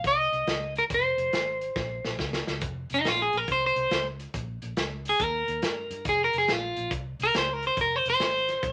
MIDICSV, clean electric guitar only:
0, 0, Header, 1, 2, 480
1, 0, Start_track
1, 0, Key_signature, -4, "minor"
1, 0, Tempo, 429185
1, 1010, Time_signature, 4, 2, 24, 8
1, 9757, End_track
2, 0, Start_track
2, 0, Title_t, "Clean electric guitar"
2, 0, Program_c, 0, 27
2, 82, Note_on_c, 0, 75, 88
2, 817, Note_off_c, 0, 75, 0
2, 878, Note_on_c, 0, 70, 75
2, 934, Note_off_c, 0, 70, 0
2, 1056, Note_on_c, 0, 72, 72
2, 2429, Note_off_c, 0, 72, 0
2, 3290, Note_on_c, 0, 63, 81
2, 3446, Note_off_c, 0, 63, 0
2, 3446, Note_on_c, 0, 65, 79
2, 3585, Note_off_c, 0, 65, 0
2, 3603, Note_on_c, 0, 68, 79
2, 3773, Note_off_c, 0, 68, 0
2, 3773, Note_on_c, 0, 70, 85
2, 3909, Note_off_c, 0, 70, 0
2, 3936, Note_on_c, 0, 72, 88
2, 4070, Note_off_c, 0, 72, 0
2, 4099, Note_on_c, 0, 72, 90
2, 4542, Note_off_c, 0, 72, 0
2, 5696, Note_on_c, 0, 68, 97
2, 5856, Note_off_c, 0, 68, 0
2, 5856, Note_on_c, 0, 70, 76
2, 6766, Note_off_c, 0, 70, 0
2, 6811, Note_on_c, 0, 68, 83
2, 6947, Note_off_c, 0, 68, 0
2, 6982, Note_on_c, 0, 70, 88
2, 7113, Note_off_c, 0, 70, 0
2, 7137, Note_on_c, 0, 68, 88
2, 7298, Note_off_c, 0, 68, 0
2, 7298, Note_on_c, 0, 65, 89
2, 7741, Note_off_c, 0, 65, 0
2, 8091, Note_on_c, 0, 70, 102
2, 8227, Note_off_c, 0, 70, 0
2, 8250, Note_on_c, 0, 72, 68
2, 8424, Note_off_c, 0, 72, 0
2, 8424, Note_on_c, 0, 70, 75
2, 8553, Note_off_c, 0, 70, 0
2, 8578, Note_on_c, 0, 72, 78
2, 8710, Note_off_c, 0, 72, 0
2, 8736, Note_on_c, 0, 70, 79
2, 8900, Note_off_c, 0, 70, 0
2, 8900, Note_on_c, 0, 72, 90
2, 9031, Note_off_c, 0, 72, 0
2, 9056, Note_on_c, 0, 72, 91
2, 9757, Note_off_c, 0, 72, 0
2, 9757, End_track
0, 0, End_of_file